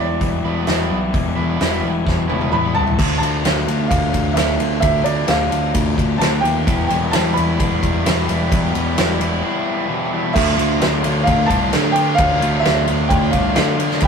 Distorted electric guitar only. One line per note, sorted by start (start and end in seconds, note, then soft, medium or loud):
0.00 0.19 E2 medium
0.00 0.20 E3 soft
0.00 0.20 G3 medium
0.00 0.20 B3 medium
0.00 0.21 E4 medium
0.20 0.66 E2 medium
0.20 0.67 B2 medium
0.20 0.47 E3 medium
0.20 0.46 G3 loud
0.20 0.45 B3 loud
0.20 0.45 E4 loud
0.45 0.66 E3 medium
0.45 0.66 G3 medium
0.45 0.67 B3 medium
0.45 0.69 E4 medium
0.66 1.13 E3 medium
0.66 1.13 G3 medium
0.66 1.13 B3 medium
0.66 1.13 E4 medium
1.13 1.59 E2 medium
1.13 1.59 B2 medium
1.13 1.36 E3 medium
1.13 1.36 G3 loud
1.13 1.35 B3 medium
1.13 1.35 E4 medium
1.36 1.57 E3 medium
1.36 1.57 G3 medium
1.36 1.58 B3 medium
1.36 1.58 E4 medium
1.58 1.80 E3 medium
1.58 1.80 G3 medium
1.58 1.80 B3 medium
1.58 1.79 E4 medium
1.80 2.04 E3 soft
1.80 2.04 G3 medium
1.80 2.04 B3 medium
1.80 2.05 E4 medium
2.04 2.51 E2 medium
2.04 2.51 B2 medium
2.04 2.27 E3 medium
2.04 2.26 G3 medium
2.04 2.26 B3 medium
2.04 2.25 E4 medium
2.26 2.50 E3 medium
2.26 2.50 G3 medium
2.26 2.51 B3 medium
2.26 2.51 E4 medium
2.51 2.96 E3 medium
2.51 2.97 G3 medium
2.51 2.97 B3 medium
2.51 2.97 E4 medium
2.97 3.43 D3 medium
2.97 3.23 A3 medium
2.97 3.22 D4 medium
2.97 3.21 F4 medium
3.21 3.44 A3 medium
3.21 3.45 D4 medium
3.21 3.45 F4 medium
3.44 4.36 D3 medium
3.44 3.69 A3 medium
3.44 3.68 D4 medium
3.44 3.67 F4 medium
3.67 4.36 A3 medium
3.67 4.37 D4 medium
3.67 4.37 F4 medium
4.36 4.80 D3 medium
4.36 4.60 A3 loud
4.36 4.60 D4 medium
4.36 4.59 F4 medium
4.60 4.81 A3 medium
4.60 4.82 D4 medium
4.60 4.81 F4 medium
4.81 5.25 D3 medium
4.81 5.04 A3 medium
4.81 5.05 D4 loud
4.81 5.03 F4 loud
5.04 5.25 A3 medium
5.04 5.27 D4 medium
5.04 5.28 F4 medium
5.26 5.74 D3 medium
5.26 5.50 A3 medium
5.26 5.50 D4 medium
5.26 5.48 F4 medium
5.49 6.18 A3 medium
5.49 6.20 D4 medium
5.49 6.20 F4 medium
6.19 6.65 D3 loud
6.19 6.44 A3 loud
6.19 6.44 D4 loud
6.19 6.42 F4 loud
6.43 6.66 A3 medium
6.43 6.66 D4 medium
6.43 6.65 F4 medium
6.65 8.04 E2 medium
6.65 7.12 B2 medium
6.65 6.90 E3 medium
6.65 6.90 G3 loud
6.65 6.89 B3 medium
6.65 6.89 E4 loud
6.89 7.11 E3 medium
6.89 7.13 G3 medium
6.89 7.14 B3 medium
6.89 7.14 E4 medium
7.12 7.36 E3 medium
7.12 7.35 G3 medium
7.12 7.35 B3 medium
7.12 7.34 E4 medium
7.34 8.05 E3 medium
7.34 8.04 G3 medium
7.34 8.04 B3 medium
7.34 8.06 E4 medium
8.04 8.49 E2 medium
8.04 8.50 B2 loud
8.04 8.29 E3 medium
8.04 8.28 G3 loud
8.04 8.27 B3 loud
8.04 8.28 E4 loud
8.28 8.50 E3 medium
8.28 8.50 G3 medium
8.28 8.51 B3 medium
8.28 8.51 E4 medium
8.51 8.97 E2 loud
8.51 8.97 B2 medium
8.51 8.75 E3 loud
8.51 8.75 G3 loud
8.51 8.74 B3 loud
8.51 8.74 E4 loud
8.75 8.97 E3 medium
8.75 8.97 G3 medium
8.75 8.98 B3 medium
8.75 8.99 E4 medium
8.98 9.22 E3 medium
8.98 9.21 G3 medium
8.98 9.20 B3 medium
8.98 9.20 E4 medium
9.21 9.88 E3 medium
9.21 9.88 G3 medium
9.21 9.89 B3 medium
9.21 9.88 E4 medium
9.88 10.33 E2 loud
9.88 10.33 B2 loud
9.88 10.13 E3 loud
9.88 10.13 G3 loud
9.88 10.12 B3 loud
9.88 10.10 E4 loud
10.12 10.33 E3 medium
10.12 10.33 G3 medium
10.12 10.34 B3 medium
10.12 10.33 E4 medium
10.33 10.55 D3 loud
10.33 10.56 A3 loud
10.33 10.56 D4 medium
10.33 10.57 F4 loud
10.56 10.79 D3 medium
10.56 10.80 A3 medium
10.56 10.80 D4 medium
10.56 10.80 F4 medium
10.80 11.01 D3 medium
10.80 11.02 A3 medium
10.80 11.02 D4 loud
10.80 11.03 F4 medium
11.02 11.24 D3 medium
11.02 11.24 A3 medium
11.02 11.25 D4 medium
11.02 11.25 F4 medium
11.25 11.46 D3 loud
11.25 11.46 A3 medium
11.25 11.48 D4 loud
11.25 11.47 F4 loud
11.47 11.69 D3 medium
11.47 11.69 A3 medium
11.47 11.70 D4 loud
11.47 11.70 F4 loud
11.70 11.93 D3 medium
11.70 11.93 A3 medium
11.70 11.95 D4 loud
11.70 11.94 F4 medium
11.94 12.17 D3 medium
11.94 12.17 A3 medium
11.94 12.18 D4 medium
11.94 12.18 F4 loud
12.18 12.40 D3 loud
12.18 12.39 A3 loud
12.18 12.41 D4 loud
12.18 12.40 F4 loud
12.40 12.62 D3 medium
12.40 12.61 A3 medium
12.40 12.62 D4 medium
12.40 12.62 F4 medium
12.63 12.85 D3 medium
12.63 12.85 A3 medium
12.63 12.85 D4 medium
12.63 12.86 F4 medium
12.86 13.07 D3 medium
12.86 13.08 A3 medium
12.86 13.09 D4 medium
12.86 13.08 F4 medium
13.08 13.29 D3 loud
13.08 13.30 A3 medium
13.08 13.31 D4 loud
13.08 13.30 F4 loud
13.30 13.53 D3 medium
13.30 13.53 A3 medium
13.30 13.54 D4 loud
13.30 13.54 F4 medium
13.54 13.75 D3 medium
13.54 13.76 A3 medium
13.54 13.78 D4 medium
13.54 13.77 F4 loud
13.76 14.00 D3 medium
13.76 14.00 A3 medium
13.76 14.03 D4 medium
13.76 14.01 F4 loud
14.01 14.07 E2 loud
14.01 14.07 B2 loud
14.01 14.07 E3 loud
14.01 14.07 G3 loud
14.01 14.07 B3 loud
14.01 14.07 E4 loud